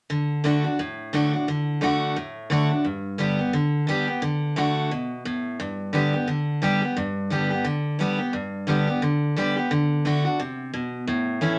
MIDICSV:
0, 0, Header, 1, 2, 480
1, 0, Start_track
1, 0, Key_signature, 2, "major"
1, 0, Tempo, 342857
1, 143, Time_signature, 4, 2, 24, 8
1, 16225, End_track
2, 0, Start_track
2, 0, Title_t, "Steel-string acoustic guitar"
2, 0, Program_c, 0, 25
2, 138, Note_on_c, 0, 50, 83
2, 597, Note_off_c, 0, 50, 0
2, 613, Note_on_c, 0, 50, 93
2, 623, Note_on_c, 0, 57, 91
2, 633, Note_on_c, 0, 62, 92
2, 645, Note_on_c, 0, 66, 105
2, 880, Note_off_c, 0, 66, 0
2, 888, Note_off_c, 0, 50, 0
2, 893, Note_off_c, 0, 57, 0
2, 897, Note_on_c, 0, 66, 65
2, 898, Note_off_c, 0, 62, 0
2, 929, Note_on_c, 0, 62, 50
2, 1092, Note_off_c, 0, 66, 0
2, 1108, Note_off_c, 0, 62, 0
2, 1109, Note_on_c, 0, 45, 86
2, 1581, Note_on_c, 0, 50, 92
2, 1592, Note_on_c, 0, 57, 92
2, 1599, Note_on_c, 0, 62, 100
2, 1610, Note_on_c, 0, 66, 96
2, 1851, Note_off_c, 0, 66, 0
2, 1853, Note_off_c, 0, 50, 0
2, 1858, Note_off_c, 0, 57, 0
2, 1861, Note_off_c, 0, 62, 0
2, 1868, Note_on_c, 0, 66, 54
2, 1902, Note_on_c, 0, 62, 45
2, 2028, Note_off_c, 0, 45, 0
2, 2058, Note_off_c, 0, 66, 0
2, 2073, Note_on_c, 0, 50, 86
2, 2075, Note_off_c, 0, 62, 0
2, 2516, Note_off_c, 0, 50, 0
2, 2533, Note_on_c, 0, 50, 79
2, 2543, Note_on_c, 0, 57, 91
2, 2559, Note_on_c, 0, 62, 94
2, 2572, Note_on_c, 0, 66, 106
2, 3000, Note_off_c, 0, 50, 0
2, 3005, Note_off_c, 0, 57, 0
2, 3013, Note_off_c, 0, 62, 0
2, 3020, Note_off_c, 0, 66, 0
2, 3029, Note_on_c, 0, 45, 87
2, 3498, Note_on_c, 0, 50, 97
2, 3515, Note_on_c, 0, 57, 88
2, 3519, Note_on_c, 0, 62, 91
2, 3529, Note_on_c, 0, 66, 107
2, 3767, Note_off_c, 0, 66, 0
2, 3773, Note_off_c, 0, 50, 0
2, 3781, Note_off_c, 0, 57, 0
2, 3783, Note_off_c, 0, 62, 0
2, 3784, Note_on_c, 0, 66, 54
2, 3824, Note_on_c, 0, 62, 44
2, 3950, Note_off_c, 0, 45, 0
2, 3978, Note_off_c, 0, 66, 0
2, 3983, Note_on_c, 0, 43, 83
2, 3998, Note_off_c, 0, 62, 0
2, 4453, Note_on_c, 0, 50, 84
2, 4466, Note_on_c, 0, 55, 91
2, 4478, Note_on_c, 0, 59, 90
2, 4482, Note_on_c, 0, 67, 92
2, 4725, Note_off_c, 0, 67, 0
2, 4731, Note_off_c, 0, 50, 0
2, 4737, Note_off_c, 0, 55, 0
2, 4742, Note_on_c, 0, 67, 60
2, 4744, Note_off_c, 0, 59, 0
2, 4769, Note_on_c, 0, 59, 51
2, 4907, Note_off_c, 0, 43, 0
2, 4938, Note_off_c, 0, 67, 0
2, 4946, Note_on_c, 0, 50, 89
2, 4951, Note_off_c, 0, 59, 0
2, 5400, Note_off_c, 0, 50, 0
2, 5417, Note_on_c, 0, 50, 90
2, 5437, Note_on_c, 0, 55, 89
2, 5441, Note_on_c, 0, 59, 100
2, 5452, Note_on_c, 0, 67, 107
2, 5688, Note_off_c, 0, 67, 0
2, 5694, Note_off_c, 0, 50, 0
2, 5704, Note_off_c, 0, 55, 0
2, 5705, Note_on_c, 0, 67, 54
2, 5706, Note_off_c, 0, 59, 0
2, 5729, Note_on_c, 0, 59, 46
2, 5900, Note_off_c, 0, 67, 0
2, 5906, Note_on_c, 0, 50, 91
2, 5912, Note_off_c, 0, 59, 0
2, 6369, Note_off_c, 0, 50, 0
2, 6386, Note_on_c, 0, 50, 92
2, 6395, Note_on_c, 0, 57, 86
2, 6407, Note_on_c, 0, 62, 94
2, 6415, Note_on_c, 0, 66, 97
2, 6850, Note_off_c, 0, 50, 0
2, 6854, Note_off_c, 0, 57, 0
2, 6860, Note_off_c, 0, 62, 0
2, 6865, Note_off_c, 0, 66, 0
2, 6879, Note_on_c, 0, 47, 86
2, 7337, Note_off_c, 0, 47, 0
2, 7355, Note_on_c, 0, 45, 91
2, 7815, Note_off_c, 0, 45, 0
2, 7834, Note_on_c, 0, 43, 86
2, 8299, Note_on_c, 0, 50, 84
2, 8313, Note_on_c, 0, 55, 96
2, 8323, Note_on_c, 0, 59, 89
2, 8328, Note_on_c, 0, 67, 101
2, 8569, Note_off_c, 0, 67, 0
2, 8577, Note_off_c, 0, 50, 0
2, 8584, Note_off_c, 0, 55, 0
2, 8586, Note_on_c, 0, 67, 65
2, 8589, Note_off_c, 0, 59, 0
2, 8617, Note_on_c, 0, 59, 48
2, 8755, Note_off_c, 0, 43, 0
2, 8782, Note_off_c, 0, 67, 0
2, 8785, Note_on_c, 0, 50, 92
2, 8798, Note_off_c, 0, 59, 0
2, 9246, Note_off_c, 0, 50, 0
2, 9263, Note_on_c, 0, 50, 89
2, 9276, Note_on_c, 0, 55, 92
2, 9284, Note_on_c, 0, 59, 95
2, 9295, Note_on_c, 0, 67, 104
2, 9530, Note_off_c, 0, 67, 0
2, 9539, Note_off_c, 0, 50, 0
2, 9545, Note_off_c, 0, 55, 0
2, 9547, Note_on_c, 0, 67, 59
2, 9549, Note_off_c, 0, 59, 0
2, 9581, Note_on_c, 0, 59, 47
2, 9743, Note_off_c, 0, 67, 0
2, 9751, Note_on_c, 0, 43, 92
2, 9760, Note_off_c, 0, 59, 0
2, 10225, Note_on_c, 0, 50, 84
2, 10238, Note_on_c, 0, 55, 81
2, 10245, Note_on_c, 0, 59, 89
2, 10256, Note_on_c, 0, 67, 94
2, 10490, Note_off_c, 0, 67, 0
2, 10500, Note_off_c, 0, 50, 0
2, 10506, Note_off_c, 0, 55, 0
2, 10506, Note_on_c, 0, 67, 60
2, 10510, Note_off_c, 0, 59, 0
2, 10546, Note_on_c, 0, 59, 48
2, 10673, Note_off_c, 0, 43, 0
2, 10702, Note_on_c, 0, 50, 86
2, 10703, Note_off_c, 0, 67, 0
2, 10722, Note_off_c, 0, 59, 0
2, 11166, Note_off_c, 0, 50, 0
2, 11183, Note_on_c, 0, 50, 90
2, 11200, Note_on_c, 0, 55, 89
2, 11209, Note_on_c, 0, 59, 103
2, 11216, Note_on_c, 0, 67, 95
2, 11437, Note_off_c, 0, 67, 0
2, 11454, Note_on_c, 0, 67, 57
2, 11459, Note_off_c, 0, 50, 0
2, 11467, Note_off_c, 0, 55, 0
2, 11468, Note_off_c, 0, 59, 0
2, 11484, Note_on_c, 0, 59, 41
2, 11656, Note_off_c, 0, 67, 0
2, 11663, Note_on_c, 0, 43, 86
2, 11671, Note_off_c, 0, 59, 0
2, 12136, Note_on_c, 0, 50, 88
2, 12150, Note_on_c, 0, 55, 91
2, 12163, Note_on_c, 0, 59, 86
2, 12176, Note_on_c, 0, 67, 96
2, 12403, Note_off_c, 0, 67, 0
2, 12414, Note_off_c, 0, 50, 0
2, 12420, Note_on_c, 0, 67, 60
2, 12422, Note_off_c, 0, 55, 0
2, 12428, Note_off_c, 0, 59, 0
2, 12456, Note_on_c, 0, 59, 49
2, 12588, Note_off_c, 0, 43, 0
2, 12618, Note_off_c, 0, 67, 0
2, 12630, Note_on_c, 0, 50, 87
2, 12636, Note_off_c, 0, 59, 0
2, 13094, Note_off_c, 0, 50, 0
2, 13110, Note_on_c, 0, 50, 86
2, 13123, Note_on_c, 0, 55, 96
2, 13132, Note_on_c, 0, 59, 103
2, 13139, Note_on_c, 0, 67, 107
2, 13376, Note_off_c, 0, 67, 0
2, 13381, Note_off_c, 0, 50, 0
2, 13387, Note_off_c, 0, 55, 0
2, 13392, Note_off_c, 0, 59, 0
2, 13393, Note_on_c, 0, 67, 60
2, 13418, Note_on_c, 0, 59, 46
2, 13584, Note_off_c, 0, 67, 0
2, 13592, Note_on_c, 0, 50, 91
2, 13597, Note_off_c, 0, 59, 0
2, 14052, Note_off_c, 0, 50, 0
2, 14069, Note_on_c, 0, 50, 77
2, 14075, Note_on_c, 0, 57, 89
2, 14086, Note_on_c, 0, 62, 88
2, 14098, Note_on_c, 0, 66, 101
2, 14329, Note_off_c, 0, 66, 0
2, 14339, Note_off_c, 0, 50, 0
2, 14342, Note_off_c, 0, 57, 0
2, 14345, Note_on_c, 0, 66, 58
2, 14348, Note_off_c, 0, 62, 0
2, 14378, Note_on_c, 0, 62, 58
2, 14539, Note_off_c, 0, 66, 0
2, 14553, Note_on_c, 0, 48, 86
2, 14555, Note_off_c, 0, 62, 0
2, 15011, Note_off_c, 0, 48, 0
2, 15029, Note_on_c, 0, 47, 90
2, 15488, Note_off_c, 0, 47, 0
2, 15504, Note_on_c, 0, 45, 89
2, 15975, Note_on_c, 0, 52, 94
2, 15984, Note_on_c, 0, 57, 91
2, 15991, Note_on_c, 0, 61, 92
2, 16002, Note_on_c, 0, 64, 94
2, 16225, Note_off_c, 0, 45, 0
2, 16225, Note_off_c, 0, 52, 0
2, 16225, Note_off_c, 0, 57, 0
2, 16225, Note_off_c, 0, 61, 0
2, 16225, Note_off_c, 0, 64, 0
2, 16225, End_track
0, 0, End_of_file